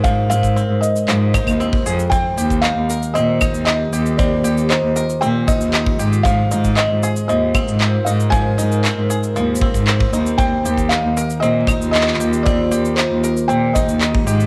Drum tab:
SH |x---x-x-x---x-x-x---x-x-x---x-x-|x---x-x-x---x-x-x---x-x-x---x-x-|x---x-x-x---x-x-x---x-x-x---x-x-|x---x-x-x---x-x-x---x-x-----x-x-|
CL |--------------------x-x---------|--------------------x-----------|--------------------------------|--------------------x-----------|
CP |----------------x---------------|--------x---------------x-------|--------x---------------x-------|--------x---------------x-------|
BD |o-----o-------------o-o---o-----|o-----o-------------o-----------|o-------------------o-----o-----|o-----o-------------o-----------|

SH |x---x-x-x---x-x-x--x--x-x---x-x-|x---x-x-x---x-x-x---x-x-x---x-x-|x---x-x-x---x-x-x---x-x-x---x-x-|
CL |--------------------------------|--------------------x-----------|--------------------------------|
CP |--------x---------------x-------|--------x---------------xxxx----|--------x---------------x-------|
BD |o-------------------o-o---o-----|o-----o-------------o-----------|o-------------------o-----o-----|